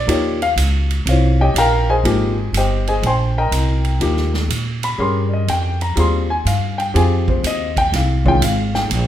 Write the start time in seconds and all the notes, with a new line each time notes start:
0.07 D#2 F3 A#3 D#4 G4 C#5, ride
0.42 F5, ride
0.56 C#2, hi-hat pedal, ride
0.90 ride
1.06 C2 C5 F5, ride
1.10 F4 C#5
1.41 G4 C#5 D#5 G5
1.54 A#1 A#5, hi-hat pedal, ride
1.58 A#4 F5 G5
1.90 G#4 C5 D#5 G#5
2.04 G#1 F3 A#3 D#4 G4, ride
2.53 G1, hi-hat pedal, ride
2.57 G4 C5 D#5 G5
2.87 G#4 C5 D#5 G#5, ride
3.02 A#1, ride
3.06 C5 G5 G#5 C6
3.38 A#4 D#5 G5 A#5
3.51 C2, hi-hat pedal, ride
3.85 ride
4.00 D#2 F3 A#3 D#4 G4, ride
4.17 snare
4.34 snare
4.49 A#2, hi-hat pedal, ride
4.83 B5, ride
4.98 G2 C#4 G4 G#4 A#4 C6
5.29 D5
5.34 D#5
5.48 F2 G5, hi-hat pedal, ride
5.81 A#5, ride
5.96 D#2 G3 C4 F4 G#4 C6, ride
6.30 G#5
6.45 G2 F5, hi-hat pedal, ride
6.78 G5, ride
6.94 F2 C4 F4 G4 G#4 G#5, ride
7.28 C5, kick
7.43 D#2 D#5, hi-hat pedal, ride
7.77 G5, kick, ride
7.92 C2 F5, snare, ride
8.25 D#3 G#3 C#4 F4 G5, kick
8.41 G#1 F5, hi-hat pedal, ride
8.75 G5, snare
8.90 A#1, ride